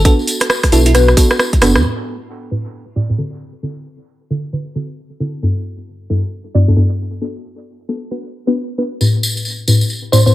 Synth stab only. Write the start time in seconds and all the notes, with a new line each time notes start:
0.05 B3 D4 F#4 A4
0.72 B3 D4 F#4 A4
0.95 B3 D4 F#4 B4
1.17 B3 D4 F#4 A4
1.62 B3 D4 F#4 A4
1.84 A2 C4 E4 B4
2.51 A2 C4 E4 G4 B4
2.96 A2 C4 E4 G4 D5
3.10 A2 C4 E4 G4 B4
3.18 D3 C4 E4 F#4 A4
3.63 D3 C4 E4 F#4 A4
4.30 D3 C4 E4 F#4 A4
4.53 D3 C4 E4 F#4 B4
4.75 D3 C4 E4 F#4 A4
5.20 D3 C4 E4 F#4 A4
5.43 G2 B3 D4 E4 F#4 A4
6.10 G2 B3 D4 E4 F#4 A4
6.54 G2 B3 D4 E4 F#4 D5
6.68 G2 B3 D4 E4 F#4 A4
6.77 G2 B3 D4 E4 F#4 A4
7.21 B3 D4 F#4 A4
7.89 B3 D4 F#4 A4
8.11 B3 D4 F#4 B4
8.47 B3 D4 F#4 B4
8.78 B3 D4 F#4 B4
9.01 A2 C4 E4 G4 B4
9.68 A2 C4 E4 G4 B4
10.12 A2 C4 E4 G4 D5
10.26 A2 C4 E4 G4 B4